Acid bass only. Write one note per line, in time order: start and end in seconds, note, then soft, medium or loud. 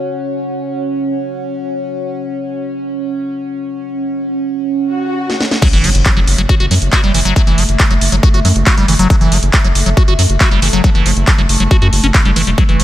5.62 5.68 F#3 medium
5.73 5.86 E3 medium
5.84 5.90 F#3 medium
6.17 6.20 F#3 medium
6.38 6.42 F#3 medium
6.49 6.55 F#4 medium
6.60 6.66 F#4 medium
6.71 6.75 F#3 medium
6.93 7.02 F#4 medium
7.04 7.13 G3 medium
7.14 7.20 E3 medium
7.25 7.34 F#3 loud
7.47 7.59 E3 medium
7.58 7.64 F#3 medium
7.91 7.94 F#3 medium
8.12 8.16 F#3 medium
8.23 8.29 F#4 medium
8.34 8.40 F#4 medium
8.45 8.48 F#3 medium
8.67 8.76 F#4 medium
8.78 8.86 G3 medium
8.88 8.94 E3 medium
8.99 9.08 F#3 loud
9.21 9.33 E3 medium
9.32 9.38 F#3 medium
9.64 9.68 F#3 medium
9.86 9.90 F#3 medium
9.97 10.03 F#4 medium
10.08 10.14 F#4 medium
10.19 10.22 F#3 medium
10.41 10.50 F#4 medium
10.51 10.60 G3 medium
10.62 10.68 E3 medium
10.73 10.82 F#3 loud
10.95 11.07 E3 medium
11.06 11.12 F#3 medium
11.38 11.42 F#3 medium
11.60 11.64 F#3 medium
11.71 11.77 F#4 medium
11.82 11.88 F#4 medium
12.04 12.07 C#4 medium
12.25 12.31 G3 medium
12.36 12.42 E3 loud
12.47 12.51 G3 medium
12.58 12.64 F#3 medium
12.69 12.81 E3 medium
12.80 12.84 F#3 medium